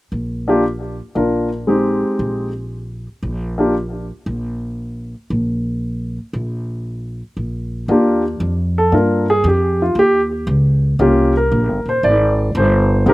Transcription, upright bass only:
0.12 A#1
1.15 A#1
2.19 A#1
3.23 A#1
4.26 A#1
5.30 A#1
6.33 A#1
7.37 A#1
7.88 D#2
8.40 F2
8.92 G2
9.44 F2
9.95 D#2
10.47 C#2
10.99 C2
11.52 A#1
11.68 G1
11.85 D#1
12.03 G#1
12.55 G1
13.06 A#1

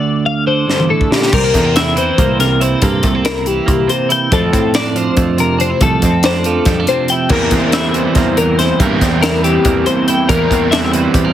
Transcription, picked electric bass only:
1.33 C2
1.54 E2
2.18 C2
2.83 G2
3.03 C2
3.68 C2
4.32 F2
4.53 A2
5.17 F2
5.81 C2
6.03 F2
6.66 F2
7.30 E2
7.51 E2
8.16 E2
8.80 G2
9.01 E2
9.65 E2
10.29 E2
10.51 E2
11.14 E2

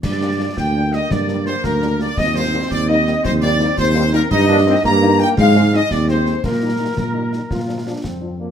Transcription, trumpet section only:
0.03 D5
0.57 G5
0.93 D#5
1.10 D5
1.46 C5
1.64 A#4
2.01 D5
2.18 D#5
2.36 C5
2.71 D5
2.88 D#5
3.24 C5
3.41 D5
3.77 C5
4.12 A#4
4.31 D#5
4.84 A#5
5.20 G5
5.38 F5
5.74 D#5
5.91 D5
6.09 C5
6.44 A#4

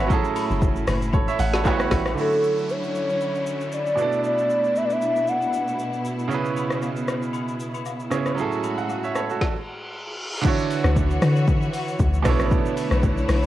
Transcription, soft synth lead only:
2.18 A4
2.70 C#5
3.74 D5
4.25 D5
4.77 E5
4.85 D5
4.92 E5
5.29 F#5

